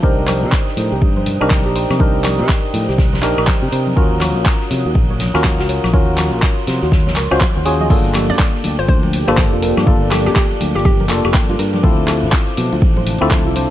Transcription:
Already playing: C5
0.03 C2 D4 D#4 G4 A#4 C5 G5 A#5 D#6, kick, ride
0.18 ride
0.28 A#4, clap, open hi-hat, high conga, high woodblock
0.43 C3
0.52 kick, snare, clap
0.68 snare
0.77 A2, snare, open hi-hat, ride, high conga
0.92 C2 G4
1.02 G2, kick, ride
1.17 C5, high conga
1.26 open hi-hat, ride, low conga
1.41 C2 D4 D#4 G4 A#4, high woodblock
1.50 A#5, kick, snare, clap, high conga
1.66 A#1 G4
1.75 C5, open hi-hat, ride
1.90 C3, snare, high conga, high woodblock
1.99 C2 D4 D#4 G4 A#4 C5, kick, ride
2.15 ride
2.24 A#4, clap, open hi-hat, ride, high conga, high woodblock
2.39 C3
2.48 kick, snare, clap, ride
2.64 ride
2.73 A2, open hi-hat, ride, high conga
2.88 C2 G4, snare
2.98 kick, snare, ride
3.13 C5, snare, ride, high conga, low conga
3.22 A#1 D4 D#4 G4 A#4, clap, open hi-hat, ride, high woodblock
3.38 A#1 A#4, high woodblock
3.47 A#5, kick, snare, clap, high conga
3.62 C3 G4
3.72 C3 C5, open hi-hat, ride
3.87 high conga
3.96 D#2 C#4 F4 F#4 A#4 C#5, kick, ride
4.12 ride
4.21 A#4, clap, open hi-hat, ride, high conga, high woodblock
4.36 A#1
4.46 kick, snare, clap
4.61 snare
4.70 C3, snare, open hi-hat, ride, high conga
4.86 D#2 F#4
4.95 A#1, kick, ride
5.10 C#5, high conga
5.19 snare, open hi-hat, ride, low conga
5.34 D#2 C#4 F4 F#4 A#4, snare, ride, high woodblock
5.43 A#5, kick, snare, clap, high conga
5.59 C#2 F#4, snare, ride
5.68 C#5, open hi-hat, ride
5.84 A#1, snare, high conga, high woodblock
5.93 D#2 C#4 F4 F#4 A#4 C#5 C6, kick, ride
6.08 ride
6.17 A#4, clap, open hi-hat, ride, high conga, high woodblock
6.33 A#1
6.42 kick, snare, clap
6.58 ride
6.67 C3, snare, open hi-hat, ride, high conga
6.82 D#2 F#4, snare
6.91 kick, snare, ride
7.06 C#5, snare, ride, high conga, low conga
7.16 C#2 A#4, clap, open hi-hat, high woodblock
7.31 C#2 C#4 F4 F#4 C5 D#5, high woodblock
7.40 F#4, kick, clap, high conga
7.56 D#2 C#5, ride
7.65 C#4 F4 F#4 G#4 C#5, open hi-hat, ride
7.80 D#5, ride, high conga
7.90 G1 A#3 D4 F4 G4 A4 A#4 G5 D6, kick, crash, ride
8.05 ride, muted conga
8.14 G4, clap, open hi-hat, ride, high conga, high woodblock
8.29 G2 D5
8.39 kick, snare, clap, muted conga
8.55 snare
8.63 D2, snare, open hi-hat, ride, muted conga, high conga
8.79 G1 F4 C5
8.88 D2 C5, kick, ride
9.03 A#4, muted conga, high conga
9.13 open hi-hat, ride, low conga
9.27 G1 A#3 D4 F4 G4 A4 C5, muted conga, high woodblock
9.37 G5, kick, snare, clap, high conga
9.53 F1 F4
9.62 A#4, open hi-hat, ride, muted conga
9.77 G2, snare, high conga, high woodblock
9.86 G1 A#3 D4 F4 A4 A#4, kick, ride, muted conga
10.02 ride
10.11 G4, snare, clap, open hi-hat, ride, high conga, high woodblock
10.26 G2 G4, snare, muted conga
10.35 G4, kick, snare, clap, ride
10.51 ride, muted conga
10.61 D2, open hi-hat, ride, high conga
10.75 G1 F4 G4, snare
10.85 G4, kick, ride, muted conga
11.00 A#4, high conga, low conga
11.09 F1 A#3 D4 F4 A4, snare, clap, open hi-hat, ride, muted conga, high woodblock
11.25 F1 G4, high woodblock
11.34 G5, kick, snare, clap, high conga
11.49 G2 F4, muted conga
11.59 G2 A#4, open hi-hat, ride
11.73 snare, muted conga, high conga
11.83 D2 C4 D4 E4 F4 A4 C5 A5, kick, ride
11.99 ride
12.08 A4, clap, open hi-hat, ride, muted conga, high conga, high woodblock
12.23 A1
12.32 kick, snare, clap, muted conga
12.48 snare
12.57 B2, snare, open hi-hat, ride, high conga
12.72 D2 F4, muted conga
12.82 A1, kick, ride
12.97 C5, muted conga, high conga
13.06 open hi-hat, ride, low conga
13.21 D2 C4 E4 F4 A4, high woodblock
13.30 A5, kick, snare, clap, muted conga, high conga
13.46 C2 F4
13.55 C5, open hi-hat, ride, muted conga

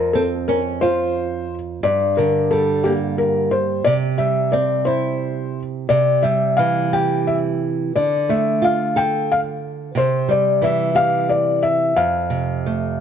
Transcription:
Already playing: F2 A#4
0.13 C4 A4
0.48 C#4 A#4
0.81 F4 C5
1.83 G2 D5
2.17 D3 A#4
2.51 G3 A4
2.84 A#3 G4
3.18 A#4
3.51 C5
3.84 C3 D5
4.18 G3 E5
4.52 C4 D5
4.85 E4 C5
5.89 C3 D5
6.23 G3 E5
6.57 E3 F5
6.93 G4 G5
7.27 E5
7.96 D3 D5
8.29 A3 E5
8.62 F4 F5
8.96 A4 G5
9.32 F5
9.95 C3 C5
10.28 G3 D5
10.62 E3 E5
10.95 G4 F5
11.29 D5
11.63 E5
11.96 F2 F5
12.30 C3
12.66 A3

